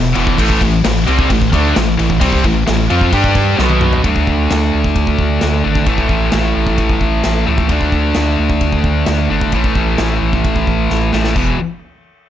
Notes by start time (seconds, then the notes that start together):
Already playing: E1 E2 B2
0.15 E1 E2 B2 E3, crash
0.27 kick
0.38 A1 A2 E3 A3, kick, crash
0.50 kick
0.61 A1 A2 E3, kick, crash
0.84 A1 A2 E3, snare, crash
1.07 C2 C3 G3 C4, crash
1.19 kick
1.29 A1 A2 E3, kick, crash
1.42 kick
1.52 D2 D3 A3 D4, kick, crash
1.75 A1 A2 E3, snare, crash
1.98 A1 A2 E3, crash
2.10 kick
2.20 C2 C3 G3 C4, kick, crash
2.33 kick
2.44 A1 A2 E3, kick, crash
2.67 A1 A2 E3, snare, crash
2.90 F2 F3 C4 F4, crash
3.01 kick
3.12 G2 G3 D4 G4, kick, crash
3.24 kick
3.35 kick, crash
3.59 B1 B2 F#3 B3, snare
3.70 high tom
3.81 mid tom
3.93 floor tom
4.04 D2 D3 A3 D4, kick, ride bell
4.16 kick
4.27 D2, kick
4.50 D2, snare, ride bell
4.74 D2
4.84 kick
4.96 D2, kick, ride bell
5.07 kick
5.18 D2, kick
5.41 D2, snare, ride bell
5.64 G#1 D3 A3 D4
5.75 kick
5.86 A1 A2 E3 A3, kick, ride bell
5.98 kick
6.09 A1, kick
6.32 A1, snare, ride bell
6.56 A1
6.67 kick
6.78 A1, kick, ride bell
6.89 kick
7.01 A1, kick
7.24 A1, snare, ride bell
7.47 C#2 A2 E3 A3
7.58 kick
7.69 D2 D3 A3 D4, kick, ride bell
7.81 kick
7.92 D2, kick
8.15 D2, snare, ride bell
8.39 D2
8.50 kick
8.61 D2, kick, ride bell
8.73 kick
8.84 D2, kick
9.06 D2, snare, ride bell
9.30 G1 D3 A3 D4
9.41 kick
9.52 A1 A2 E3 A3, kick, ride bell
9.64 kick
9.75 A1, kick
9.98 A1, snare, ride bell
10.22 A1
10.33 kick
10.44 A1, kick, ride bell
10.56 kick
10.67 A1, kick
10.90 A1, snare
11.13 A1 A2 E3 A3, snare
11.24 snare
11.36 E1 E2 B2 E3, kick, crash